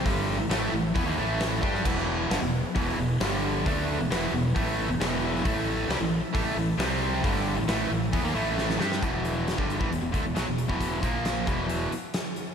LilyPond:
<<
  \new Staff \with { instrumentName = "Tonewheel organ" } { \time 4/4 \key a \major \tempo 4 = 134 <a e' a' e''>1 | <b e' gis' b'>2. <g d' g' d''>4 | <b e' gis' b'>1 | <a e' a' e''>2. <c' g' c'' g''>4 |
<a e' a' e''>1 | r1 | r1 | }
  \new Staff \with { instrumentName = "Distorted electric guitar" } { \clef bass \time 4/4 \key a \major <g, d g>8. <a, e>16 <a, e a>8 <a, e>8 <e b>16 <dis ais>16 <a, e a>4 <g d' g'>8 | <e, b, e>4 <g, d>16 <e, b,>8 r16 <e, b, e>8 <e, b,>8 <g, d g>4 | <d a d'>8. <e, b,>16 <e, b, e>8 <e, b,>8 <a, e a>8. <e, b,>16 <e, b, e>4 | <a, e a>4 <c g>16 <a, e>8 r16 <a, e a>8 <a, e>8 <c g c'>4 |
<g, d g>8. <a, e>16 <a, e a>8 <a, e>8 <e b>16 <dis ais>16 <a, e a>4 <g d' g'>8 | <e, b, e>4~ <e, b, e>16 <g, d g>8 <a, e>16 <e, b,>16 <e, b,>16 <d a>16 <e, b,>16 <b, fis>16 <e, b,>8 <e, b, e>16~ | <e, b, e>8 <ais, eis ais>4 <e, b, e>4 r4. | }
  \new Staff \with { instrumentName = "Overdriven electric guitar" } { \clef bass \time 4/4 \key a \major <g, d g>8. <a, e>16 <a, e a>8 <a, e>8 <e b>16 <dis ais>16 <a, e a>4 <g d' g'>8 | <e, b, e>4 <g, d>16 <e, b,>8 r16 <e, b, e>8 <e, b,>8 <g, d g>4 | <d a d'>8. <e, b,>16 <e, b, e>8 <e, b,>8 <a, e a>8. <e, b,>16 <e, b, e>4 | <a, e a>4 <c g>16 <a, e>8 r16 <a, e a>8 <a, e>8 <c g c'>4 |
<g, d g>8. <a, e>16 <a, e a>8 <a, e>8 <e b>16 <dis ais>16 <a, e a>4 <g d' g'>8 | <e, b, e>4~ <e, b, e>16 <g, d g>8 <a, e>16 <e, b,>16 <e, b,>16 <d a>16 <e, b,>16 <b, fis>16 <e, b,>8 <e, b, e>16~ | <e, b, e>8 <ais, eis ais>4 <e, b, e>4 r4. | }
  \new Staff \with { instrumentName = "Fingered electric bass" } { \clef bass \time 4/4 \key a \major g,,8. a,,16 a,,8 a,,8 e,16 dis,16 a,,4 g,8 | e,,4 g,,16 e,,8 r16 e,,8 e,,8 g,,4 | d,8. e,,16 e,,8 e,,8 a,,8. e,,16 e,,4 | a,,4 c,16 a,,8 r16 a,,8 a,,8 c,4 |
g,,8. a,,16 a,,8 a,,8 e,16 dis,16 a,,4 g,8 | e,,4~ e,,16 g,,8 a,,16 e,,16 e,,16 d,16 e,,16 b,,16 e,,8 e,,16~ | e,,8 ais,,4 e,,4 r4. | }
  \new DrumStaff \with { instrumentName = "Drums" } \drummode { \time 4/4 <hho bd>4 <hho sn>4 <hho bd>4 <hho sn>8 bd16 sn16 | <cymc bd>16 sn8. <hho sn>4 <hho bd>4 <hho sn>4 | <hho bd>4 <hho sn>4 <hho bd>4 <hho sn>8. sn16 | <hho bd>4 <hho sn>4 <hho bd>4 <hho sn>4 |
<hho bd>16 sn8. <hho sn>4 <hho bd>4 sn16 sn16 sn16 sn16 | <hh bd>8 hh8 <hh sn>16 bd16 hh16 bd16 hh8 <hh bd>8 <hh sn>8 hh16 bd16 | <hh bd>8 <hh bd>8 <hh sn>8 <hh bd>8 hh8 hh8 <hh sn>8 hh8 | }
>>